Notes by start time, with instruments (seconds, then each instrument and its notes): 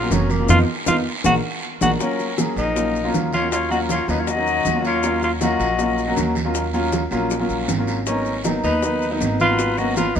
Already playing: tenor saxophone F4
0.01 grand piano F#3 A#3 C#4 F#4
0.10 upright bass F1, tenor saxophone C#4, high bongo, low bongo, high conga, short guiro, maracas
0.30 tenor saxophone A#3, high bongo, high conga, short guiro, maracas
0.39 grand piano F#3 A#3 C#4 F4
0.49 upright bass F2, grand piano B3 D#4 F4, tenor saxophone F4, low bongo, high conga, long guiro, maracas
0.86 upright bass F2, grand piano B3 D#4 F4, tenor saxophone F4, low bongo, high conga, long guiro, maracas
1.24 upright bass A#1, grand piano G#3 A#3 D4, tenor saxophone F#4, low bongo, high conga, long guiro, maracas
1.81 upright bass A#1, grand piano G#3 A#3 D4, tenor saxophone F#4, low bongo, high conga, long guiro, maracas
1.99 grand piano F#3 A#3 C#4 F4, tenor saxophone C#4, flute A#4, high bongo, high conga, long guiro, maracas
2.19 high bongo, high conga, maracas
2.37 grand piano F#3 A#3 C#4 G#4, high bongo, high conga, short guiro, maracas
2.56 upright bass A#1, tenor saxophone D#4, flute A#4, high bongo, short guiro, maracas
2.75 grand piano F#3 A#3 C#4 F4, high bongo, high conga, long guiro, maracas
2.95 high conga, maracas
3.03 grand piano F#3 A#3 C#4 F4
3.13 upright bass D#2, high bongo, low bongo, high conga, short guiro, maracas
3.33 tenor saxophone F4, flute C#5, high bongo, high conga, short guiro, maracas
3.41 grand piano F#3 A#3 C#4 F#4
3.51 tenor saxophone F4, flute C#5, high bongo, long guiro, maracas
3.69 grand piano F#3 A#3 C#4 F4, tenor saxophone F#4, flute D#5, high bongo, high conga, maracas
3.89 tenor saxophone F4, flute C#5, high bongo, high conga, short guiro, maracas
4.07 upright bass D#2, grand piano F#3 A#3 C#4 F4, tenor saxophone D#4, flute B4, high bongo, high conga, short guiro, maracas
4.19 tenor saxophone F4, flute C#5
4.27 tenor saxophone F#4, flute D#5, high bongo, high conga, long guiro, maracas
4.35 grand piano F#3 A#3 C#4 D#4
4.46 high conga, maracas
4.65 upright bass D#2, high bongo, low bongo, high conga, short guiro, maracas
4.74 grand piano F#3 A#3 C#4 F4
4.84 tenor saxophone F4, flute C#5, high bongo, high conga, short guiro, maracas
5.02 grand piano F#3 A#3 C#4 F4, high bongo, high conga, long guiro, maracas
5.22 tenor saxophone F4, flute C#5, high bongo, high conga, maracas
5.41 grand piano F#3 A#3 C#4 F4, tenor saxophone F#4, flute D#5, high bongo, high conga, short guiro, maracas
5.59 upright bass A#1, high bongo, short guiro, maracas
5.78 grand piano F#3 A#3 C#4 F4, high bongo, high conga, long guiro, maracas
5.98 high conga, maracas
6.07 grand piano F#3 A#3 C#4 F#4
6.16 upright bass D#2, high bongo, low bongo, high conga, short guiro, maracas
6.35 high bongo, high conga, short guiro, maracas
6.44 grand piano F#3 A#3 C#4 F4
6.54 high bongo, long guiro, maracas
6.73 grand piano F#3 A#3 C#4 F4, high bongo, high conga, maracas
6.92 high bongo, high conga, short guiro, maracas
7.11 upright bass A#1, grand piano F#3 A#3 C#4 F4, high bongo, high conga, short guiro, maracas
7.30 high bongo, high conga, long guiro, maracas
7.39 grand piano F#3 A#3 C#4 F4
7.49 upright bass A#1, high conga, maracas
7.68 upright bass G#1, high bongo, low bongo, high conga, short guiro, maracas
7.77 grand piano F#3 A#3 C#4 F4
7.87 high bongo, high conga, short guiro, maracas
8.06 grand piano F#3 A#3 B3 D#4, tenor saxophone C#4, flute A#4, high bongo, high conga, long guiro, maracas
8.26 high bongo, high conga, maracas
8.44 grand piano F#3 A#3 B3 D#4, high bongo, high conga, short guiro, maracas
8.63 upright bass D#2, tenor saxophone D#4, flute B4, high bongo, short guiro, maracas
8.82 grand piano F#3 A#3 B3 D#4, high bongo, high conga, long guiro, maracas
9.02 high conga, maracas
9.10 grand piano F#3 A#3 B3 D#4
9.20 upright bass G#1, high bongo, low bongo, high conga, short guiro, maracas
9.39 tenor saxophone F4, flute B4, high bongo, high conga, short guiro, maracas
9.49 grand piano F#3 A#3 B3 F#4
9.59 high bongo, high conga, long guiro, maracas
9.77 grand piano F#3 A#3 B3 C#4, tenor saxophone F#4, flute D#5, high bongo, high conga, maracas
9.97 tenor saxophone F4, flute B4, high bongo, high conga, short guiro, maracas
10.15 upright bass D#2, grand piano F#3 A#3 B3 D#4, tenor saxophone D#4, flute B4, high bongo, high conga, short guiro, maracas